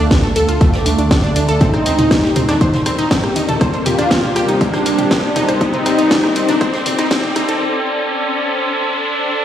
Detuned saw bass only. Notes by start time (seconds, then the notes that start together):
0.11 D2
0.36 D2
0.49 D2
0.61 D2
0.86 D2
0.99 D2
1.11 D2
1.36 D2
1.49 D2
1.61 D#2
1.86 D#2
1.99 D#2
2.11 D#2
2.36 D#2
2.49 D#2
2.61 D#2
2.86 D#2
2.98 D#1
3.11 D#2
3.36 D#2
3.48 D#2
3.61 D#2
3.86 D#2
3.99 D#2
4.11 D#2
4.36 D#2
4.49 D#2
4.61 D#2
4.86 D#2
4.98 D#1
5.11 D#2
5.36 D#2
5.49 D#2
5.61 D#2
5.86 D#2
5.99 D#2
6.11 D#2
6.36 D#2
6.49 D#2
6.61 D#2
6.86 D#2
6.99 D#1
7.11 D#2
7.36 D#2
7.49 D#2